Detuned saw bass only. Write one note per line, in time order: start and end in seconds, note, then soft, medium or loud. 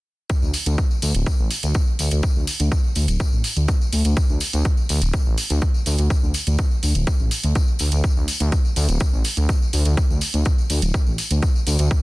0.42 0.52 D2 medium
0.66 0.76 D2 medium
1.02 1.12 D2 medium
1.15 1.24 D1 medium
1.39 1.49 A1 medium
1.63 1.73 D2 medium
1.99 2.09 D2 medium
2.12 2.21 D2 medium
2.36 2.45 D2 medium
2.60 2.69 D2 medium
2.96 3.06 D2 medium
3.08 3.18 D1 medium
3.32 3.42 A1 medium
3.56 3.66 D2 medium
3.92 4.03 D2 medium
4.05 4.15 D2 medium
4.29 4.39 D2 medium
4.53 4.63 D2 medium
4.89 4.99 D2 medium
5.02 5.11 D1 medium
5.26 5.36 A1 medium
5.50 5.60 D2 medium
5.86 5.96 D2 medium
5.99 6.08 D2 medium
6.23 6.32 D2 medium
6.47 6.57 D2 medium
6.83 6.93 D2 medium
6.95 7.05 D1 medium
7.20 7.29 A1 medium
7.44 7.53 D2 medium
7.80 7.90 D2 medium
7.92 8.02 D2 medium
8.16 8.26 D2 medium
8.40 8.50 D2 medium
8.76 8.86 D2 medium
8.89 8.98 D1 medium
9.13 9.23 A1 medium
9.37 9.47 D2 medium
9.73 9.83 D2 medium
9.85 9.95 D2 medium
10.10 10.19 D2 medium
10.34 10.44 D2 medium
10.70 10.80 D2 medium
10.82 10.92 D1 medium
11.07 11.16 A1 medium
11.31 11.40 D2 medium
11.67 11.77 D2 medium
11.79 11.89 D2 medium